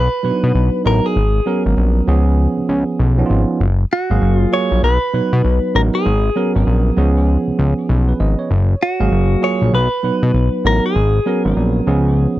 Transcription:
0.00 0.82 B4 loud
0.23 0.32 B2 soft
0.23 0.75 F#3 medium
0.23 0.75 B3 medium
0.23 0.32 D4 medium
0.23 0.76 B4 medium
0.31 0.79 D#4 medium
0.44 0.53 B2 loud
0.55 0.70 B1 loud
0.85 1.01 A1 loud
0.85 1.15 F#3 medium
0.85 1.16 B3 medium
0.85 1.16 D#4 medium
0.85 1.16 A#4 medium
0.85 1.06 A#4 medium
1.06 1.62 G#4 medium
1.16 1.41 G#1 loud
1.46 2.07 F#3 medium
1.46 2.06 B3 medium
1.46 2.07 C#4 medium
1.46 2.07 A#4 loud
1.66 1.75 G#1 medium
1.77 2.02 A#1 medium
2.07 2.48 C#2 loud
2.07 2.95 F3 medium
2.07 2.95 B3 medium
2.07 2.95 C#4 medium
2.07 2.95 G#4 loud
2.58 2.62 C#2 medium
2.69 2.84 C#2 loud
2.99 3.24 B1 loud
3.18 3.60 F3 medium
3.18 3.61 B3 medium
3.18 3.61 C#4 medium
3.18 3.24 D#4 medium
3.26 3.45 G#1 loud
3.26 3.64 F4 loud
3.60 3.85 F#1 loud
3.93 4.38 F#4 medium
4.10 4.20 G#1 medium
4.10 4.45 F#3 medium
4.10 4.45 A#3 medium
4.10 4.46 G#4 loud
4.10 4.45 F5 medium
4.22 4.46 F#1 loud
4.38 4.55 F4 medium
4.52 4.83 F#3 medium
4.52 4.83 A#3 medium
4.52 4.83 F4 medium
4.52 4.83 G#4 medium
4.52 4.84 C#5 loud
4.72 4.81 A#1 medium
4.83 4.98 B1 loud
4.83 5.75 B4 loud
5.13 5.21 B2 medium
5.13 5.65 F#3 medium
5.13 5.65 B3 medium
5.13 5.65 D#4 medium
5.13 5.66 B4 medium
5.33 5.42 B2 loud
5.44 5.60 B1 loud
5.74 5.90 A1 medium
5.74 6.05 F#3 medium
5.74 6.05 B3 medium
5.74 6.06 D#4 medium
5.74 6.06 A#4 medium
5.74 5.81 A#4 medium
5.95 6.52 G#4 medium
6.06 6.30 G#1 loud
6.36 6.96 F#3 medium
6.36 6.96 B3 medium
6.36 6.96 C#4 medium
6.36 6.97 A#4 medium
6.55 6.65 G#1 medium
6.67 6.91 A#1 medium
6.97 7.37 C#2 loud
6.97 7.84 F3 medium
6.97 7.84 B3 medium
6.97 7.85 C#4 medium
6.97 7.85 G#4 loud
7.47 7.52 C#2 soft
7.59 7.74 C#2 loud
7.89 8.14 B1 loud
8.09 8.19 B4 medium
8.20 8.35 G#1 medium
8.20 8.38 D#5 medium
8.39 8.68 C#5 medium
8.51 8.75 F#1 loud
8.83 9.45 F#4 medium
9.00 9.09 G#1 medium
9.00 9.35 F#3 medium
9.00 9.35 A#3 medium
9.00 9.35 G#4 loud
9.00 9.35 F5 medium
9.12 9.36 F#1 loud
9.42 9.73 F#3 medium
9.42 9.73 A#3 medium
9.42 9.73 F4 medium
9.42 9.73 G#4 medium
9.42 9.74 C#5 loud
9.62 9.71 A#1 medium
9.73 9.88 B1 loud
9.73 10.66 B4 loud
10.03 10.11 B2 soft
10.03 10.55 F#3 medium
10.03 10.55 B3 medium
10.03 10.55 D#4 medium
10.03 10.56 B4 medium
10.23 10.32 B2 loud
10.34 10.50 B1 medium
10.64 10.80 A1 loud
10.64 10.95 F#3 medium
10.64 10.95 B3 medium
10.64 10.95 D#4 medium
10.64 10.96 A#4 medium
10.64 10.84 A#4 medium
10.86 11.42 G#4 medium
10.95 11.20 G#1 loud
11.26 11.86 F#3 medium
11.26 11.86 B3 medium
11.26 11.86 C#4 medium
11.26 11.87 A#4 medium
11.45 11.54 G#1 medium
11.57 11.81 A#1 medium
11.87 12.27 C#2 loud
11.87 12.40 F3 medium
11.87 12.40 B3 medium
11.87 12.40 C#4 medium
11.87 12.40 G#4 medium

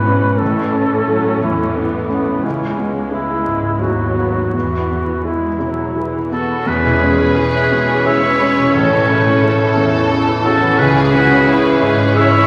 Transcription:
0.00 0.37 E2 soft
0.00 0.41 G#2 soft
0.00 0.43 B2 soft
0.00 0.39 E3 soft
0.00 0.07 C#4 soft
0.00 0.44 E4 soft
0.00 0.41 B4 medium
0.00 0.43 B4 soft
0.07 0.40 C#4 soft
0.07 0.41 C#4 soft
0.39 2.41 A1 soft
0.39 2.41 A2 soft
0.39 1.07 E3 soft
0.39 1.73 C#4 soft
0.39 1.43 A4 medium
0.73 1.28 C#4 soft
1.07 1.41 F#3 soft
1.07 1.38 E4 soft
1.07 1.38 A4 soft
1.40 1.96 E2 soft
1.40 2.42 E3 soft
1.40 1.76 E4 soft
1.75 2.10 B3 soft
1.75 2.06 E4 soft
1.75 2.07 A4 soft
2.09 2.44 A3 soft
2.09 2.45 B3 soft
2.09 2.44 C#4 soft
2.43 3.78 C#2 soft
2.43 3.82 C#2 soft
2.43 2.78 E3 soft
2.43 2.77 G#3 soft
2.43 3.15 C#4 soft
2.78 3.82 G#3 soft
2.78 3.33 B3 soft
3.11 3.43 E4 soft
3.11 3.84 E4 medium
3.11 3.43 G#4 soft
3.46 3.82 G#2 soft
3.82 4.54 D#2 soft
3.82 4.54 F#3 soft
3.82 4.52 B3 soft
3.82 4.14 E4 soft
3.82 4.53 F#4 soft
3.82 4.15 G#4 soft
4.17 4.53 B3 soft
4.53 6.63 E2 soft
4.53 6.43 E2 soft
4.53 5.17 E3 soft
4.53 5.17 B3 soft
4.53 5.26 F#4 soft
4.90 5.47 B3 soft
5.25 5.58 G#3 soft
5.25 5.57 E4 soft
5.25 6.32 E4 soft
5.25 5.57 G#4 soft
5.60 6.17 B2 soft
5.60 5.97 F#3 soft
5.96 6.32 E3 soft
5.96 6.28 E4 soft
5.96 6.28 G#4 soft
6.32 6.67 B3 soft
6.32 6.64 F#4 soft
6.32 6.69 A4 soft
6.66 7.24 E1 soft
6.66 8.70 E2 soft
6.66 8.77 E2 soft
6.66 7.24 E2 soft
6.66 6.83 C#3 soft
6.66 8.70 G#3 soft
6.66 10.75 C#4 soft
6.66 8.06 G#4 medium
6.66 8.05 B4 medium
6.84 8.57 B2 soft
6.84 7.02 E3 soft
7.01 7.19 G#3 soft
7.01 7.56 C#4 soft
7.01 8.22 E4 soft
7.18 7.36 E3 soft
7.18 8.05 G#4 soft
7.35 7.54 C#3 soft
7.35 7.67 E4 soft
7.35 8.02 G#4 soft
7.35 7.67 G#4 soft
7.35 7.88 C#5 soft
7.53 7.71 E3 soft
7.53 9.59 E5 soft
7.71 8.27 B2 soft
7.71 7.89 G#3 soft
7.71 8.77 G#5 soft
7.89 8.06 E3 soft
7.89 9.42 C#5 soft
8.05 8.23 C#3 soft
8.05 8.37 E4 soft
8.05 8.37 G#4 soft
8.05 8.77 G#4 soft
8.05 8.75 B4 soft
8.05 8.74 C#5 medium
8.05 8.73 E5 medium
8.23 8.40 E3 soft
8.23 9.07 E4 soft
8.40 8.57 G#3 soft
8.40 8.75 C#4 soft
8.40 10.44 C#4 soft
8.57 8.77 B2 soft
8.57 8.74 E3 soft
8.74 9.31 A1 medium
8.74 10.75 A1 soft
8.74 9.31 A2 soft
8.74 10.82 A2 soft
8.74 8.90 C#3 soft
8.74 12.47 E3 soft
8.74 10.11 A4 medium
8.74 9.08 A4 soft
8.74 10.08 C#5 medium
8.91 9.08 E3 soft
8.91 10.61 E3 soft
9.08 9.25 C#3 soft
9.08 9.63 C#4 soft
9.08 10.27 E4 soft
9.08 9.43 B4 medium
9.26 9.43 E3 soft
9.26 10.10 A4 soft
9.42 9.59 C#3 soft
9.42 9.73 E4 soft
9.42 9.73 A4 soft
9.42 10.79 A4 medium
9.42 9.92 C#5 soft
9.60 9.77 E3 soft
9.60 11.62 E5 soft
9.76 10.31 E2 soft
9.76 9.94 C#3 soft
9.76 10.82 A5 soft
9.94 10.11 E3 soft
9.94 11.45 C#5 soft
10.10 10.28 C#3 soft
10.10 10.41 E4 soft
10.10 10.41 A4 soft
10.10 10.82 A4 soft
10.27 10.45 E3 soft
10.27 11.11 E4 soft
10.44 10.62 C#3 soft
10.44 12.47 C#4 soft
10.44 10.79 C#4 soft
10.44 10.76 F#4 medium
10.44 10.80 A4 medium
10.62 10.79 E3 soft
10.62 10.82 E3 soft
10.78 11.35 C#2 medium
10.78 12.47 C#2 soft
10.78 10.94 C#3 medium
10.78 11.35 C#3 medium
10.78 12.47 C#3 medium
10.78 12.47 C#4 medium
10.78 12.47 C#4 soft
10.78 12.16 G#4 medium
10.78 11.12 G#4 medium
10.78 12.15 B4 medium
10.95 11.12 E3 soft
10.95 12.47 G#3 soft
11.13 11.30 C#3 soft
11.13 11.67 C#4 soft
11.13 12.32 E4 soft
11.13 11.47 F#4 medium
11.29 11.47 E3 soft
11.29 12.14 G#4 soft
11.46 11.63 C#3 soft
11.46 11.77 E4 soft
11.46 11.81 E4 medium
11.46 11.78 G#4 soft
11.46 11.97 C#5 soft
11.63 11.81 E3 soft
11.63 12.47 E5 soft
11.80 12.37 G#2 soft
11.80 11.99 C#3 soft
11.80 12.16 G#4 medium
11.80 12.47 G#5 soft
11.98 12.16 E3 soft
11.98 12.47 C#5 soft
12.15 12.33 C#3 medium
12.15 12.46 E4 soft
12.15 12.47 E4 medium
12.15 12.46 G#4 soft
12.15 12.47 G#4 soft
12.15 12.47 C#5 medium
12.15 12.47 E5 medium
12.32 12.47 E3 soft
12.32 12.47 E4 soft

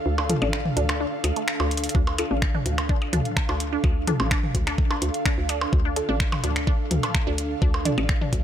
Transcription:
0.00 1.94 D4 medium
0.00 1.95 A4 medium
0.00 8.44 F5 medium
0.06 0.35 D2 loud
0.18 0.26 D4 medium
0.18 percussion blips medium
0.29 0.36 D4 medium
0.29 0.36 F4 medium
0.29 0.36 A4 medium
0.29 closed hi-hat medium
0.29 mid tom medium
0.42 0.70 A1 loud
0.42 0.47 D4 medium
0.42 percussion blips medium
0.53 finger snap medium
0.65 mid tom medium
0.77 1.06 D2 medium
0.77 0.86 D4 medium
0.77 closed hi-hat medium
0.89 finger snap medium
0.89 closed hi-hat soft
0.89 percussion blips medium
1.00 1.06 D4 medium
1.24 1.32 D2 medium
1.24 closed hi-hat medium
1.24 percussion blips medium
1.36 1.42 A3 medium
1.36 closed hi-hat soft
1.48 finger snap medium
1.60 1.89 D2 medium
1.60 1.68 D5 medium
1.60 percussion blips medium
1.71 closed hi-hat medium
1.77 closed hi-hat medium
1.84 closed hi-hat medium
1.89 closed hi-hat medium
1.95 2.24 D2 loud
1.95 2.01 D4 medium
1.95 8.44 D4 medium
1.95 kick loud
2.07 percussion blips medium
2.18 2.30 D4 medium
2.18 2.30 F4 medium
2.18 2.30 A4 medium
2.18 closed hi-hat medium
2.18 percussion blips medium
2.27 8.44 A4 medium
2.31 2.59 A1 loud
2.31 2.39 D4 medium
2.42 finger snap loud
2.42 kick loud
2.55 2.60 D4 medium
2.55 mid tom medium
2.66 2.95 D2 medium
2.66 closed hi-hat medium
2.78 finger snap medium
2.78 closed hi-hat soft
2.78 percussion blips medium
2.89 2.98 D4 medium
2.89 kick loud
3.02 percussion blips medium
3.13 3.21 D2 loud
3.13 3.19 D4 medium
3.13 closed hi-hat medium
3.13 mid tom medium
3.25 closed hi-hat soft
3.37 finger snap medium
3.37 kick loud
3.37 percussion blips medium
3.49 3.78 D2 medium
3.49 3.57 D4 medium
3.49 percussion blips medium
3.60 closed hi-hat medium
3.73 3.78 D4 medium
3.84 4.13 D2 medium
3.84 kick loud
3.84 percussion blips medium
4.07 4.16 D4 medium
4.07 4.14 D4 medium
4.07 4.14 F4 medium
4.07 4.14 A4 medium
4.07 closed hi-hat loud
4.07 mid tom medium
4.20 4.48 A1 medium
4.20 percussion blips medium
4.31 4.37 D4 medium
4.31 finger snap loud
4.31 kick loud
4.43 mid tom medium
4.55 4.84 D2 medium
4.55 kick medium
4.55 closed hi-hat medium
4.67 4.75 D4 medium
4.67 finger snap medium
4.67 closed hi-hat soft
4.67 percussion blips medium
4.78 kick loud
4.91 4.96 D4 medium
4.91 percussion blips medium
5.02 5.10 D2 loud
5.02 closed hi-hat medium
5.14 closed hi-hat soft
5.25 5.34 D4 medium
5.25 finger snap medium
5.25 kick loud
5.38 5.66 D2 medium
5.49 5.55 D4 medium
5.49 closed hi-hat loud
5.49 percussion blips medium
5.61 percussion blips medium
5.73 6.02 D2 loud
5.73 kick loud
5.85 5.93 D4 medium
5.96 6.07 D4 medium
5.96 6.07 F4 medium
5.96 6.07 A4 loud
5.96 closed hi-hat loud
6.09 6.37 A1 loud
6.09 6.14 D4 medium
6.20 finger snap medium
6.20 kick loud
6.32 mid tom medium
6.32 percussion blips medium
6.44 6.73 D2 medium
6.44 6.53 D4 medium
6.44 closed hi-hat medium
6.56 finger snap medium
6.56 closed hi-hat soft
6.67 6.73 D4 medium
6.67 kick loud
6.91 6.99 D2 medium
6.91 closed hi-hat medium
6.91 mid tom medium
7.03 7.11 D4 medium
7.03 closed hi-hat soft
7.03 percussion blips medium
7.14 finger snap medium
7.14 kick loud
7.14 percussion blips medium
7.27 7.56 D2 medium
7.27 7.32 D4 medium
7.38 closed hi-hat medium
7.62 7.91 D2 loud
7.62 7.71 D4 medium
7.62 kick loud
7.74 percussion blips medium
7.85 7.91 D4 medium
7.85 7.92 D4 medium
7.85 7.92 F4 medium
7.85 7.92 A4 medium
7.85 closed hi-hat medium
7.85 mid tom medium
7.98 8.26 A1 loud
7.98 percussion blips medium
8.09 finger snap medium
8.09 kick loud
8.21 8.29 D4 medium
8.21 mid tom medium
8.33 8.44 D2 medium
8.33 kick medium
8.33 closed hi-hat medium

